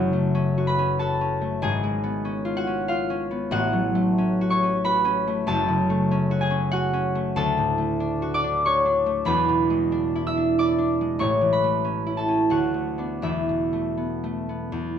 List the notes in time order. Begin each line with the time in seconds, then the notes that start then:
Already playing: F#1 F#2 C#3 A3 C#4 F#4 A4 F#5 A5
0.13 A3
0.35 C#4
0.58 F#4
0.67 B4 B5
0.79 C#4
0.99 F#4 A4 A5
1.21 C#4
1.41 A3
1.62 G#1 G#2 G#4 G#5
1.83 G#3
2.04 B3
2.25 C#4
2.45 F4
2.57 F#4 F#5
2.67 C#4
2.88 F4 F5
3.10 C#4
3.31 B3
3.51 A1 A2 F#4 F#5
3.73 F#3
3.95 A3
4.18 C#4
4.41 F#4
4.50 C#5 C#6
4.63 C#4
4.84 F#4 B4 B5
5.05 C#4
5.27 A3
5.47 F#1 F#2 A4 A5
5.68 C#3
5.90 A3
6.11 C#4
6.31 F#4
6.41 G#4 G#5
6.51 C#4
6.71 F#4 F#5
6.93 C#4
7.15 A3
7.36 D2 A4 A5
7.58 A2
7.78 A3
8.00 D4
8.22 F#4
8.34 D5 D6
8.44 D4
8.65 F#4 C#5 C#6
8.85 D4
9.06 A3
9.25 E1 E2 B4 B5
9.49 B2
9.70 G#3
9.92 D4
10.15 E4
10.27 E5 E6
10.37 D4
10.59 E4 D5 D6
10.78 D4
11.01 G#3
11.19 A1 A2 C#5 C#6
11.41 E3
11.53 B4 B5
11.64 A3
11.85 C#4
12.06 E4
12.17 A4 A5
12.28 C#4
12.50 D2 F#4 F#5
12.74 A3
12.98 B3 D4
13.22 E1 E2 E4 E5
13.49 B2
13.73 A3
13.97 B3
14.24 A3
14.49 B3
14.72 E2